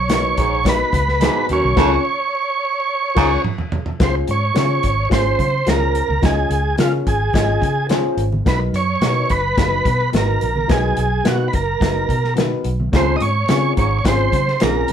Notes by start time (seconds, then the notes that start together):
Already playing: B1 C#5
0.09 B3 D#4 F#4 A#4, snare, closed hi-hat, high conga
0.37 A#1 G#2, kick, closed hi-hat
0.64 B3 D#4 F#4 A#4, kick, snare, closed hi-hat, muted conga
0.69 B4
0.93 C#2, kick, closed hi-hat, muted conga
1.08 snare
1.20 G#2 B3 D#4 F#4 A#4, snare, closed hi-hat, high conga
1.49 D#2 F#2 C#5, closed hi-hat
1.62 B1, high conga
1.76 C#2 F2 C#4 F4 G#4 A#4, kick, snare, crash
3.14 C#2 G#2 C#4 F4 G#4 A#4, kick, snare, crash
3.44 mid tom
3.58 floor tom
3.72 floor tom
3.86 floor tom
3.99 C#2 C#4 F4 G#4 C5, kick, snare, closed hi-hat, muted conga
4.04 C5
4.28 G#2 C#5, closed hi-hat, muted conga
4.54 C#3 C#4 F4 G#4 C5, snare, closed hi-hat, high conga
4.83 G#1, kick, closed hi-hat
5.09 G#1 C#4 F4 G#4 C5, kick, snare, closed hi-hat, muted conga
5.39 C#3, kick, closed hi-hat, muted conga, low conga
5.66 C#2 C#4 F4 G#4 A#4 C5, snare, closed hi-hat, high conga
5.95 closed hi-hat
6.08 C#2, high conga
6.22 C#2 C#4 F4 G#4 D#5, kick, snare, closed hi-hat, muted conga
6.49 C#2, closed hi-hat, muted conga
6.78 C#3 C#4 F4 G#4 A#4, snare, closed hi-hat, high conga
7.07 G#1 G#4, kick, closed hi-hat
7.33 G#1 C#4 F4 G#4 D#5, kick, snare, closed hi-hat, muted conga
7.61 C#3, kick, closed hi-hat, muted conga
7.89 C#4 F4 G#4 C5, snare, closed hi-hat, high conga
8.17 G#1, closed hi-hat
8.32 high conga
8.45 B1 B3 D#4 F#4 A#4 B4, kick, snare, closed hi-hat, muted conga
8.73 F#2 C#5, closed hi-hat
9.01 B2 B3 D#4 F#4 A#4, snare, closed hi-hat, high conga
9.30 F#1 B4, kick, closed hi-hat
9.57 F#1 B3 D#4 F#4 A#4, kick, snare, closed hi-hat, muted conga
9.85 B2, kick, closed hi-hat, muted conga, low conga
10.12 G#1 B3 D#4 F#4 A#4, snare, closed hi-hat, high conga
10.17 A#4
10.41 A#1, closed hi-hat
10.56 high conga
10.67 B1 B3 D#4 F#4 A#4, kick, snare, closed hi-hat, muted conga
10.71 G#4
10.97 B1, closed hi-hat
11.24 B2 B3 D#4 F#4 A#4, snare, closed hi-hat, high conga
11.28 F#4
11.48 B4
11.53 F#1 A#4, kick, closed hi-hat
11.80 F#1 B3 D#4 F#4 A#4, kick, snare, closed hi-hat, muted conga
12.09 B2, kick, closed hi-hat, muted conga
12.24 snare
12.35 B3 D#4 F#4 A#4, snare, closed hi-hat, high conga
12.64 B1, closed hi-hat
12.80 high conga
12.92 C#2 F2 C4 C#4 F4 G#4, kick, snare, closed hi-hat, muted conga
12.96 C5
13.16 D#5, closed hi-hat
13.21 G#2 C#5, muted conga
13.48 C#3 C4 C#4 F4 G#4, snare, closed hi-hat, high conga
13.77 G#1 G#2 C#5, kick, closed hi-hat
13.99 C#5
14.04 G#1 C4 C#4 F4 G#4 C5, kick, snare, closed hi-hat, muted conga
14.32 C#3, kick, closed hi-hat, muted conga, low conga
14.48 snare
14.60 A#1 G#2 C4 C#4 F4 G#4 A#4, snare, closed hi-hat, high conga
14.88 F2, closed hi-hat